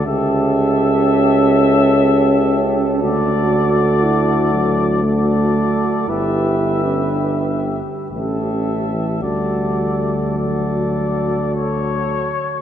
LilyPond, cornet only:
\new Staff \with { instrumentName = "Cornet" } { \time 3/4 \key d \major \tempo 4 = 58 e''2. | d''2 d''4 | e''4. r8 e''4 | d''4 d''4 cis''4 | }